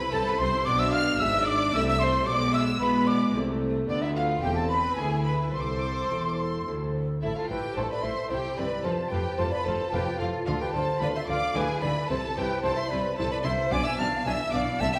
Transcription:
Already playing: B4 B5
0.01 E4
0.12 C2 C3 C4 E4 A4 A5
0.26 E4 B4 B5
0.39 C2 C3 C4 C5 C6
0.55 E4
0.65 B1 B2 D4 D5 D6
0.79 E5 E6
0.93 F5 F6
1.19 G#1 G#2 D4 E4 G#4 E5 E6
1.46 D5 D6
1.73 C2 C3 A3 C4 E4 A4 E5 E6
1.87 E5 E6
1.99 C5 C6
2.26 B1 B2 G#3 D5 D6
2.53 E5 E6
2.80 B2 G#3 B3 E4 B4 B5
3.07 D5 D6
3.34 C2 C3 A3 E4 A4
3.88 D2 B3 D4 F4 A4 D5
4.02 E4 E5
4.15 F4 F5
4.42 E1 E2 C4 E4 G4 A4 G5
4.56 A4 A5
4.69 B4 B5
4.96 D2 B3 E4 G#4 B4 G#5
5.24 B4 B5
5.53 C2 A4 C5 C6
5.61 D6
5.70 C6
5.78 D6
5.87 C6
5.95 D6
6.03 C6
6.10 E1 E2 C4 E4 A4 D6
6.20 C6
6.27 D6
6.36 C6
6.66 D2 C4 E4 A4
7.22 A1 A2 E4 A4 E5
7.36 E4 F4 A4 F5
7.48 A1 A2 C4 E4 G4 B4 G5
7.63 E4
7.76 A1 A2 D4 E4 A4 C5 A5
7.90 E4 B4 D5 B5
8.03 A1 A2 C4 E4 C5 E5 C6
8.17 E4
8.30 C2 C3 E4 G4 C5 G5
8.44 E4
8.57 C2 C3 C4 E4 B4 D5 B5
8.70 E4
8.84 F1 F2 F4 A4 C5 A5
8.98 F4
9.11 F1 F2 C4 F4 G4 B4 G5
9.25 F4
9.37 F1 F2 E4 F4 A4 C5 A5
9.51 F4 B4 D5 B5
9.65 F1 F2 C4 F4 A4 C5 A5
9.81 F4
9.92 F1 F2 F4 G4 B4 C5 G5
10.08 F4
10.19 F1 F2 E4 F4 A4 F5
10.33 F4
10.46 D2 D3 F4 A4 F5
10.60 F4 G4 B4 G5
10.73 D2 D3 D4 F4 A4 C5 A5
10.89 F4
11.00 D2 D3 E4 F4 B4 D5 B5
11.14 F4 C5 E5 C6
11.27 D2 D3 D4 F4 D5 F5 D6
11.41 F4
11.55 D2 D3 E4 G#4 B4 G#5
11.68 E4
11.81 D2 D3 B3 E4 B4 D5 B5
11.96 E4
12.08 C2 C3 E4 A4 C5 A5
12.23 E4
12.36 C2 C3 C4 E4 G4 B4 G5
12.49 E4
12.62 C2 C3 D4 E4 A4 C5 A5
12.75 E4 C5 E5 C6
12.88 C2 C3 C4 E4 B4 D5 B5
13.02 E4
13.16 C2 C3 E4 A4 C5 A5
13.28 E4 B4 D5 B5
13.42 C2 C3 D4 E4 C5 E5 C6
13.57 E4
13.70 B1 B2 D4 D5 G#5 D6
13.83 E4 E5 G#5 E6
13.98 B1 B2 D4 F5 A5 F6
14.10 E4
14.25 B1 B2 D4 E5 G#5 E6
14.37 E4
14.51 B1 B2 D4 D5 F5 D6
14.64 E4
14.78 C2 C3 A3 E5 A5 E6
14.91 E4 E5 G5 E6

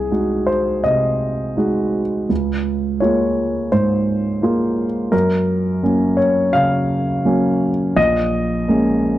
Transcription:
Already playing: C2 G#4
0.11 G#3 D#4 F#4
0.47 C5
0.84 C3 D#5
1.57 G#3 D#4 F#4
2.29 C#2
3.00 G#3 A#3 F4 C#5
3.72 G#2 C5
4.42 G#3 A#3 F4
5.12 F#2 A#4
5.83 F#3 A#3 C#4
6.17 C#5
6.53 C#3 F5
7.25 F#3 A#3 C#4
7.96 A#1 D#5
8.68 G#3 A#3 C#4

